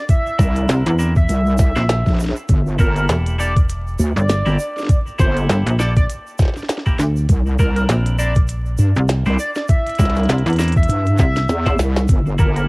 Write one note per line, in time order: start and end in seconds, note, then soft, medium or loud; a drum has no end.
0.09 0.69 E5 loud
0.09 kick loud
0.09 closed hi-hat medium
0.09 shaker medium
0.26 shaker soft
0.38 0.67 C2 medium
0.38 0.96 C4 medium
0.38 0.96 D4 medium
0.38 0.96 E4 medium
0.38 0.96 A#4 medium
0.38 kick loud
0.38 snare medium
0.38 shaker loud
0.56 closed hi-hat soft
0.56 shaker soft
0.69 0.84 C2 loud
0.69 snare loud
0.69 closed hi-hat medium
0.69 shaker medium
0.86 1.27 E2 loud
0.86 closed hi-hat medium
0.86 shaker soft
0.99 1.13 C4 medium
0.99 1.13 D4 medium
0.99 1.13 E4 medium
0.99 1.13 A#4 medium
0.99 shaker medium
1.16 1.57 E5 medium
1.16 kick loud
1.16 shaker soft
1.29 1.73 C2 loud
1.29 closed hi-hat medium
1.29 shaker medium
1.46 shaker soft
1.58 2.20 E5 loud
1.58 kick loud
1.58 snare medium
1.58 shaker loud
1.75 2.04 A#1 loud
1.75 1.83 C4 medium
1.75 1.83 D4 medium
1.75 1.83 E4 medium
1.75 1.83 C5 medium
1.75 snare soft
1.75 shaker soft
1.89 snare loud
1.89 closed hi-hat medium
1.89 shaker medium
2.06 2.34 A#1 loud
2.06 kick medium
2.06 snare soft
2.06 shaker soft
2.09 snare soft
2.15 snare soft
2.19 snare soft
2.19 shaker medium
2.25 snare soft
2.29 snare soft
2.36 shaker soft
2.49 2.77 G1 loud
2.49 kick loud
2.49 closed hi-hat medium
2.49 shaker medium
2.66 shaker soft
2.79 3.07 G1 medium
2.79 3.36 A#3 medium
2.79 3.36 E4 medium
2.79 3.36 G4 medium
2.79 3.36 A4 medium
2.79 2.90 A#4 medium
2.79 kick loud
2.79 shaker medium
2.96 3.05 A#4 medium
2.96 closed hi-hat soft
2.96 shaker soft
3.09 3.97 E1 loud
3.09 snare loud
3.09 closed hi-hat medium
3.09 shaker soft
3.26 closed hi-hat medium
3.26 shaker soft
3.38 3.53 A#3 medium
3.38 3.53 E4 medium
3.38 3.53 G4 medium
3.38 3.53 A4 medium
3.38 3.56 D5 loud
3.38 shaker medium
3.56 kick loud
3.56 closed hi-hat medium
3.56 shaker soft
3.69 closed hi-hat medium
3.69 shaker soft
3.87 shaker soft
3.99 4.14 D2 loud
3.99 shaker medium
4.16 4.44 G1 loud
4.16 4.99 D5 loud
4.16 shaker soft
4.29 snare loud
4.29 closed hi-hat medium
4.29 shaker medium
4.46 4.57 G1 medium
4.46 4.57 A#3 medium
4.46 4.57 E4 medium
4.46 4.57 G4 medium
4.46 4.57 A#4 medium
4.46 shaker soft
4.59 shaker medium
4.77 snare soft
4.77 shaker soft
4.79 snare soft
4.83 snare soft
4.85 snare soft
4.87 kick loud
4.87 snare soft
4.87 closed hi-hat medium
4.87 shaker soft
5.07 shaker soft
5.19 5.47 G1 medium
5.19 5.76 A#3 medium
5.19 5.76 E4 medium
5.19 5.76 G4 medium
5.19 5.76 A4 medium
5.19 5.36 C5 loud
5.19 kick loud
5.19 snare medium
5.19 shaker medium
5.37 closed hi-hat soft
5.37 shaker soft
5.49 5.64 G1 loud
5.49 snare loud
5.49 closed hi-hat medium
5.49 shaker soft
5.66 6.07 A#1 loud
5.66 closed hi-hat medium
5.66 shaker soft
5.79 5.93 A#3 medium
5.79 5.93 E4 medium
5.79 5.93 G4 medium
5.79 5.93 A4 medium
5.79 5.90 D5 medium
5.79 snare medium
5.79 shaker loud
5.96 6.05 D5 medium
5.96 kick loud
5.96 closed hi-hat medium
5.96 shaker soft
6.10 closed hi-hat medium
6.10 shaker medium
6.27 shaker soft
6.39 kick loud
6.39 snare medium
6.39 shaker medium
6.42 snare soft
6.45 snare soft
6.48 snare soft
6.49 snare soft
6.54 snare soft
6.56 snare soft
6.56 shaker soft
6.63 snare soft
6.69 snare loud
6.69 snare soft
6.69 closed hi-hat medium
6.69 shaker medium
6.78 snare soft
6.86 6.97 A#3 medium
6.86 6.97 E4 medium
6.86 6.97 G4 medium
6.86 6.97 A#4 medium
6.86 kick medium
6.86 shaker soft
6.99 7.27 D2 loud
6.99 snare soft
6.99 shaker medium
7.16 shaker soft
7.29 7.57 C2 loud
7.29 kick loud
7.29 closed hi-hat medium
7.29 shaker medium
7.46 shaker soft
7.59 7.87 C2 loud
7.59 8.16 C4 medium
7.59 8.16 D4 medium
7.59 8.16 E4 medium
7.59 7.70 A#4 medium
7.59 8.16 A#4 medium
7.59 kick medium
7.59 shaker medium
7.76 7.84 A#4 medium
7.76 closed hi-hat soft
7.76 shaker soft
7.89 8.77 A#1 loud
7.89 snare loud
7.89 closed hi-hat medium
7.89 shaker soft
8.06 closed hi-hat medium
8.06 shaker soft
8.19 8.33 C4 medium
8.19 8.33 D4 medium
8.19 8.33 E4 medium
8.19 8.33 A#4 medium
8.19 8.36 D5 loud
8.19 shaker medium
8.35 kick loud
8.35 closed hi-hat medium
8.35 shaker soft
8.48 closed hi-hat medium
8.48 shaker medium
8.66 shaker soft
8.78 8.93 G2 loud
8.78 shaker medium
8.96 9.24 C2 medium
8.96 shaker soft
9.08 snare loud
9.08 closed hi-hat medium
9.08 shaker medium
9.26 9.37 C2 loud
9.26 9.37 C4 medium
9.26 9.37 D4 medium
9.26 9.37 E4 medium
9.26 9.37 C5 medium
9.26 shaker soft
9.39 9.50 D5 medium
9.39 shaker medium
9.55 9.64 D5 medium
9.55 snare soft
9.55 shaker soft
9.68 10.29 E5 medium
9.68 kick loud
9.68 closed hi-hat medium
9.68 shaker medium
9.87 closed hi-hat soft
9.87 shaker soft
9.89 closed hi-hat soft
9.95 10.27 C2 loud
9.95 10.56 E4 medium
9.95 closed hi-hat soft
9.95 shaker medium
9.99 10.56 C4 medium
9.99 10.56 D4 medium
9.99 10.56 A#4 medium
9.99 kick loud
9.99 snare medium
9.99 closed hi-hat soft
10.05 snare soft
10.05 closed hi-hat soft
10.10 snare soft
10.10 closed hi-hat soft
10.16 snare soft
10.16 closed hi-hat soft
10.16 shaker soft
10.20 snare soft
10.20 closed hi-hat soft
10.25 10.43 C2 loud
10.25 snare soft
10.25 shaker soft
10.30 snare loud
10.30 closed hi-hat medium
10.38 closed hi-hat soft
10.46 10.87 E2 loud
10.46 closed hi-hat soft
10.46 shaker soft
10.50 closed hi-hat soft
10.53 closed hi-hat soft
10.56 10.73 E4 medium
10.56 10.73 A#4 medium
10.56 snare medium
10.56 closed hi-hat soft
10.56 shaker loud
10.59 10.73 C4 medium
10.59 10.73 D4 medium
10.59 closed hi-hat soft
10.63 closed hi-hat soft
10.68 closed hi-hat soft
10.72 closed hi-hat medium
10.72 shaker soft
10.76 11.17 E5 loud
10.76 kick loud
10.83 closed hi-hat medium
10.88 11.17 G2 medium
10.88 closed hi-hat medium
10.88 shaker soft
11.06 closed hi-hat soft
11.06 shaker soft
11.18 11.47 C2 loud
11.18 11.79 E5 loud
11.18 kick loud
11.18 snare medium
11.18 shaker medium
11.36 snare soft
11.36 closed hi-hat soft
11.36 shaker soft
11.49 11.77 E2 loud
11.49 snare medium
11.49 shaker soft
11.66 11.77 C4 medium
11.66 11.77 D4 medium
11.66 11.77 E4 medium
11.66 11.77 C5 medium
11.66 kick medium
11.66 snare medium
11.66 shaker soft
11.79 12.07 C2 loud
11.79 snare medium
11.79 shaker medium
11.96 snare medium
11.96 closed hi-hat soft
11.96 shaker soft
12.08 12.37 G1 loud
12.08 kick loud
12.08 closed hi-hat medium
12.08 shaker medium
12.26 shaker soft
12.38 12.67 G1 medium
12.38 12.68 A#3 medium
12.38 12.68 E4 medium
12.38 12.68 G4 medium
12.38 12.68 A4 medium
12.38 12.50 A#4 medium
12.38 kick loud
12.38 shaker medium
12.56 12.64 A#4 medium
12.56 closed hi-hat soft
12.56 shaker soft